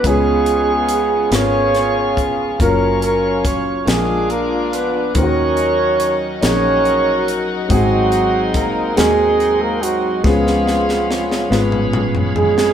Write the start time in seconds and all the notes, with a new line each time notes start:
Already playing: B3
0.03 C#2 C#3 G#3 B3 C#4 F4 G#4 B4 F5 G#5 C#6, kick, closed hi-hat
0.07 G#3 G#4
0.46 closed hi-hat
0.89 closed hi-hat
1.30 G#1 B3 C#4 F4 G#4 A#4 C#5, snare, closed hi-hat
1.75 snare, closed hi-hat
2.17 kick, closed hi-hat
2.59 F#1 F#3 A#3 C#4 F4 A#4 C#5, kick, closed hi-hat
3.02 A#3 A#4, closed hi-hat
3.45 C#4 C#5, kick, closed hi-hat
3.85 A#1 A#2 G#3 A#3 D4 F4 G#4 A#4 G#5 D6, snare, closed hi-hat
3.89 F3
4.30 A#3 A#4, closed hi-hat
4.72 B3 B4, closed hi-hat
5.14 D#2 D#3 F#3 A#3 C#4 D#4 F4 F#4 A#4 C#5 D#5 F#5 C#6, kick, closed hi-hat
5.18 C#4
5.23 F#4
5.57 closed hi-hat
6.00 closed hi-hat
6.41 A#1 A#3 C#4 D#4 F#4 G#4 A#4 C#5, snare, closed hi-hat
6.85 closed hi-hat
7.28 closed hi-hat
7.68 G#1 G#2 F#3 G#3 C4 D#4 F#4 G#4 F#5 C6, kick, closed hi-hat
8.12 closed hi-hat
8.54 A#3 A#4, kick, closed hi-hat
8.95 D#2 G#3 C4 D#4 F#4 G#4 A#4, snare, closed hi-hat
9.40 closed hi-hat
9.61 A#3 A#4
9.82 F#3 F#4, closed hi-hat
10.23 C#2 C#3 F3 G#3 B3 C#4 F4 G#4 C#5 F5 B5, kick, snare
10.27 B3
10.47 snare
10.68 snare
10.89 snare
11.11 snare
11.32 snare
11.49 G#1 G#3 B3 C#4 F4 B4, snare
11.72 mid tom
11.93 mid tom
12.15 floor tom
12.36 G#3 G#4, floor tom
12.58 snare